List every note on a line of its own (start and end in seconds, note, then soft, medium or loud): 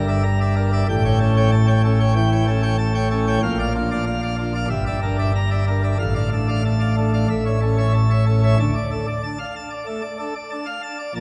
0.00 0.84 G1 medium
0.00 0.84 G2 medium
0.00 0.21 D3 medium
0.08 0.23 D5 medium
0.08 0.22 E5 medium
0.23 0.38 A#5 medium
0.40 0.54 D5 medium
0.40 0.55 E5 medium
0.56 0.83 D4 medium
0.56 0.71 A#4 medium
0.73 0.86 D5 medium
0.73 0.86 E5 medium
0.89 3.38 A1 medium
0.89 3.38 A2 loud
0.89 1.03 G5 medium
1.05 1.18 C#5 medium
1.05 1.18 G5 medium
1.20 1.49 C#4 medium
1.20 1.34 A4 medium
1.37 1.50 C#5 medium
1.37 1.50 G5 medium
1.52 1.66 A5 loud
1.67 1.81 C#5 medium
1.67 1.81 G5 medium
1.84 2.12 C#4 medium
1.84 1.98 A4 medium
2.00 2.13 C#5 medium
2.00 2.14 G5 medium
2.16 2.44 E3 medium
2.16 2.30 G5 medium
2.32 2.45 C#5 medium
2.32 2.45 G5 medium
2.47 2.75 C#4 medium
2.47 2.61 A4 medium
2.62 2.76 C#5 medium
2.62 2.76 G5 medium
2.78 2.92 A5 medium
2.94 3.08 C#5 medium
2.94 3.08 G5 medium
3.11 3.38 C#4 medium
3.11 3.25 A4 medium
3.27 3.40 C#5 medium
3.27 3.40 G5 medium
3.43 4.66 A#1 loud
3.43 4.66 A#2 medium
3.43 3.56 F5 loud
3.59 3.72 D5 medium
3.59 3.72 F5 medium
3.75 4.03 D4 medium
3.75 3.89 F4 medium
3.91 4.04 D5 medium
3.91 4.04 F5 medium
4.07 4.20 F5 medium
4.22 4.35 D5 medium
4.22 4.36 F5 medium
4.38 4.65 D4 medium
4.38 4.52 F4 medium
4.54 4.68 D5 medium
4.54 4.68 F5 medium
4.70 5.95 G1 medium
4.70 5.95 G2 loud
4.70 4.84 E5 medium
4.86 4.99 D5 medium
4.86 5.00 E5 medium
5.02 5.31 D4 medium
5.02 5.16 A#4 medium
5.19 5.32 D5 medium
5.19 5.32 E5 medium
5.35 5.49 A#5 medium
5.51 5.64 D5 medium
5.51 5.64 E5 medium
5.67 5.95 D4 medium
5.67 5.82 A#4 medium
5.83 5.97 D5 soft
5.83 5.97 E5 medium
5.99 7.27 A1 medium
5.99 7.26 A2 medium
5.99 6.13 F5 medium
6.15 6.29 D5 medium
6.15 6.29 F5 medium
6.32 6.61 D4 medium
6.32 6.47 A4 medium
6.48 6.62 D5 medium
6.48 6.62 F5 medium
6.65 6.80 A5 medium
6.80 6.95 D5 medium
6.80 6.95 F5 medium
6.97 7.25 D4 medium
6.97 7.12 A4 medium
7.14 7.28 D5 medium
7.14 7.28 F5 medium
7.29 8.56 A1 medium
7.29 8.55 A2 medium
7.29 7.44 E5 medium
7.46 7.60 C#5 medium
7.46 7.60 E5 medium
7.61 7.91 C#4 soft
7.61 7.76 A4 medium
7.78 7.92 C#5 soft
7.78 7.92 E5 medium
7.94 8.09 A5 medium
8.10 8.25 C#5 medium
8.10 8.24 E5 medium
8.26 8.54 C#4 medium
8.26 8.41 A4 medium
8.44 8.57 C#5 soft
8.44 8.57 E5 medium
8.59 8.73 D2 medium
8.59 8.73 D3 medium
8.59 8.74 A5 loud
8.75 8.90 D5 medium
8.91 9.06 D4 medium
8.91 9.06 A4 medium
9.07 9.22 D5 medium
9.23 9.38 D4 medium
9.23 9.38 A5 medium
9.39 9.54 F5 medium
9.56 9.70 A5 medium
9.71 9.86 D5 medium
9.86 10.02 A3 medium
9.86 10.02 A5 medium
10.02 10.17 D5 medium
10.19 10.34 D4 medium
10.19 10.34 A4 medium
10.35 10.50 D5 medium
10.51 10.66 D4 medium
10.51 10.66 A5 medium
10.66 10.81 F5 medium
10.83 10.97 A5 medium
10.99 11.13 D5 medium
11.15 11.20 A#1 medium
11.15 11.20 A#2 medium
11.15 11.20 A5 loud